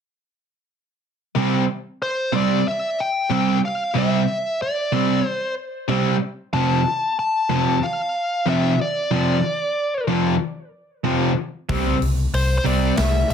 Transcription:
1.35 distorted electric guitar C3 G3 C4
2.02 lead electric guitar C5
2.33 distorted electric guitar C3 G3 C4, lead electric guitar D5
2.68 lead electric guitar E5
3.00 lead electric guitar G5
3.30 distorted electric guitar C3 G3 C4
3.65 lead electric guitar F5
3.94 distorted electric guitar C3 G3 C4
3.98 lead electric guitar E5
4.62 lead electric guitar D5
4.93 distorted electric guitar C3 G3 C4
5.27 lead electric guitar C5
5.88 distorted electric guitar C3 G3 C4
6.54 distorted electric guitar F2 C3 F3, lead electric guitar A5
7.19 lead electric guitar A5
7.50 distorted electric guitar F2 C3 F3
7.83 lead electric guitar F5
8.46 distorted electric guitar F2 C3 F3, lead electric guitar E5
8.81 lead electric guitar D5
9.11 distorted electric guitar F2 C3 F3
10.08 distorted electric guitar F2 C3 F3
11.04 distorted electric guitar F2 C3 F3
11.69 picked electric bass C2, distorted electric guitar C3 G3 C4, kick, open hi-hat
12.01 picked electric bass C2, open hi-hat
12.33 picked electric bass C2, lead electric guitar C5, open hi-hat
12.58 lead electric guitar C5
12.65 picked electric bass C2, distorted electric guitar C3 G3 C4, lead electric guitar D5, open hi-hat
12.97 picked electric bass C2, lead electric guitar E5, snare, open hi-hat
13.30 picked electric bass C2, lead electric guitar G5, open hi-hat

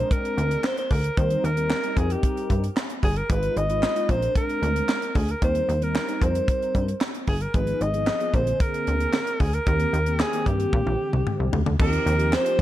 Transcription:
Already playing: analog polysynth G#3 C4 D4 A#4, alto saxophone C5
0.11 alto saxophone A#4, kick, closed hi-hat
0.25 closed hi-hat
0.37 analog synth bass D2, closed hi-hat
0.51 closed hi-hat
0.64 alto saxophone C5, snare, clap
0.77 alto saxophone C5, closed hi-hat
0.91 analog synth bass D2, alto saxophone A#4, kick, open hi-hat
1.04 closed hi-hat
1.17 analog synth bass D#2, analog polysynth G3 C4 D#4 A#4, alto saxophone C5, kick, closed hi-hat
1.30 closed hi-hat
1.44 analog synth bass D#2, alto saxophone A#4, closed hi-hat
1.56 analog polysynth G3 C4 D#4 A#4, closed hi-hat
1.70 snare, clap
1.83 analog polysynth G3 C4 D#4 A#4, closed hi-hat
1.97 analog synth bass F2, alto saxophone G#4, kick, closed hi-hat
2.10 alto saxophone G4, closed hi-hat
2.23 kick, closed hi-hat
2.37 closed hi-hat
2.50 analog synth bass G2, kick, closed hi-hat
2.64 closed hi-hat
2.77 snare, clap
2.90 closed hi-hat
3.03 analog synth bass G1, alto saxophone G#4, kick, open hi-hat
3.16 alto saxophone A#4, closed hi-hat
3.29 analog synth bass G#1, analog polysynth G#3 D#4 F4 B4, alto saxophone B4, kick, closed hi-hat
3.43 closed hi-hat
3.57 analog synth bass G#1, alto saxophone D#5, closed hi-hat
3.69 analog polysynth G#3 D#4 F4 B4, closed hi-hat
3.83 snare, clap
3.95 analog polysynth G#3 D#4 F4 B4, closed hi-hat
4.08 analog synth bass A#1, analog polysynth G#3 C4 D4 A#4, alto saxophone C5, kick, closed hi-hat
4.22 closed hi-hat
4.36 alto saxophone A#4, kick, closed hi-hat
4.49 closed hi-hat
4.62 analog synth bass D2, closed hi-hat
4.76 closed hi-hat
4.89 snare, clap
5.02 closed hi-hat
5.15 analog synth bass D2, alto saxophone G#4, kick, open hi-hat
5.29 alto saxophone A#4, closed hi-hat
5.41 analog synth bass D#2, analog polysynth G3 C4 D#4 A#4, alto saxophone C5, kick, closed hi-hat
5.55 closed hi-hat
5.69 analog synth bass D#2, closed hi-hat
5.81 analog polysynth G3 C4 D#4 A#4, alto saxophone A#4, closed hi-hat
5.95 snare, clap
6.08 analog polysynth G3 C4 D#4 A#4, closed hi-hat
6.22 analog synth bass F2, alto saxophone C5, kick, closed hi-hat
6.35 closed hi-hat
6.48 kick, closed hi-hat
6.62 closed hi-hat
6.75 analog synth bass G2, kick, closed hi-hat
6.88 closed hi-hat
7.01 snare, clap
7.14 closed hi-hat
7.27 analog synth bass G1, alto saxophone G#4, kick, open hi-hat
7.41 alto saxophone A#4, closed hi-hat
7.54 analog synth bass G#1, analog polysynth F3 B3 D#4 G#4, alto saxophone B4, kick, closed hi-hat
7.67 closed hi-hat
7.81 analog synth bass G#1, alto saxophone D#5, closed hi-hat
7.93 analog polysynth F3 B3 D#4 G#4, closed hi-hat
8.07 snare, clap
8.20 analog polysynth F3 B3 D#4 G#4, closed hi-hat
8.33 analog synth bass A#1, analog polysynth D3 A#3 C4 G#4, alto saxophone C5, kick, closed hi-hat
8.47 closed hi-hat
8.60 alto saxophone A#4, kick, closed hi-hat
8.74 closed hi-hat
8.87 analog synth bass D2, closed hi-hat
9.00 closed hi-hat
9.13 snare, clap
9.27 closed hi-hat
9.40 analog synth bass D2, alto saxophone G#4, kick, open hi-hat
9.53 alto saxophone A#4, closed hi-hat
9.66 analog synth bass D#2, analog polysynth D#3 A#3 C4 G4, alto saxophone A#4, kick, closed hi-hat
9.80 closed hi-hat
9.93 analog synth bass D#2, closed hi-hat
10.06 analog polysynth D#3 A#3 C4 G4, closed hi-hat
10.20 alto saxophone G#4, snare, clap
10.33 analog polysynth D#3 A#3 C4 G4, closed hi-hat
10.46 analog synth bass G2, alto saxophone G4, kick, closed hi-hat
10.60 closed hi-hat
10.72 analog synth bass A#2, analog polysynth D3 G#3 C4 G4, kick, high tom
10.86 analog synth bass A#1, high tom
11.13 analog synth bass C2, mid tom
11.27 mid tom
11.40 analog synth bass C2
11.53 analog synth bass D2, floor tom
11.66 analog synth bass D2, floor tom
11.79 analog synth bass D#2, analog polysynth F3 C4 D#4 F4, alto saxophone A#4, kick, crash
11.86 analog polysynth G4
11.93 closed hi-hat
12.06 analog synth bass D#2, closed hi-hat
12.19 closed hi-hat
12.33 alto saxophone C5, snare, clap
12.46 closed hi-hat

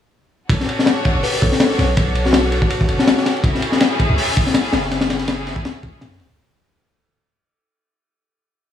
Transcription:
0.50 808-style bass B1, string section D4 F#4 A4 C#5, kick, ride
0.60 snare
0.69 ride
0.79 snare
0.86 snare, ride
1.05 kick, ride
1.15 808-style bass F#1
1.23 kalimba B4, open hi-hat
1.34 kalimba B4
1.41 808-style bass B1, kalimba A4, kick, ride
1.52 snare
1.60 string section D4 F#4 A4 C#5, kalimba A4, snare, ride
1.71 snare
1.78 808-style bass B1, snare, ride
1.97 string section D4 F#4 A4 C#5, kick, ride
2.15 ride
2.25 kalimba F#4, snare
2.33 kalimba F#4, snare, ride
2.52 ride
2.62 808-style bass F#1, kick
2.70 ride
2.81 kick
2.89 808-style bass F#1, string section D4 F#4 A4 C#5, ride
2.99 snare
3.07 snare, ride
3.17 snare
3.26 snare, ride
3.36 ride
3.44 808-style bass F#1, string section A3 C#4 E4 G#4, kick, ride
3.55 snare
3.62 ride
3.72 snare
3.80 snare, ride
4.00 kick, ride
4.09 808-style bass C#2
4.18 open hi-hat
4.37 808-style bass F#1, kick, ride
4.47 snare
4.54 string section A3 C#4 E4 G#4, snare, ride
4.64 snare
4.73 808-style bass F#1, snare, ride
4.83 snare
4.91 string section A3 C#4 E4 G#4, snare, ride
5.01 snare, ride
5.10 snare, ride
5.19 snare, ride
5.28 snare, ride
5.47 snare, ride
5.56 808-style bass C#2, kick
5.65 snare, ride
5.83 808-style bass C#2, string section A3 C#4 E4 G#4, kick, ride
6.01 808-style bass F#2, snare, ride
6.11 snare
6.20 808-style bass C#2, snare, ride
6.30 808-style bass C#2, ride

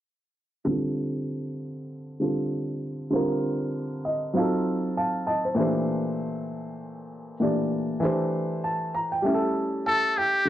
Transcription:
0.65 upright piano D3 G3 C4
0.69 upright piano F4 A4
2.20 upright piano D3 G3 C4 F4 A4
3.10 upright piano D3 G3 C4 F4
3.16 upright piano A#4
4.05 upright piano D#5
4.33 upright piano F#3 C4 D#4 F5
4.37 upright piano F4 A4
4.97 upright piano F5 A5
5.27 upright piano D#5 A5
5.45 upright piano C5
5.55 upright piano A#2 E3 A3 D4
5.59 upright piano G4 C5
7.40 upright piano A#2 E3 A3 D4 G4 D5
8.00 upright piano E3 A3 D4 G4
8.05 upright piano C5
8.64 upright piano A5
8.95 upright piano A#5
9.12 upright piano G5
9.22 upright piano G3 A3 C#4
9.26 upright piano E4 G4
9.34 upright piano A4
9.86 muted trumpet A4, upright piano A5
10.18 muted trumpet G4, upright piano G5
10.45 upright piano D3

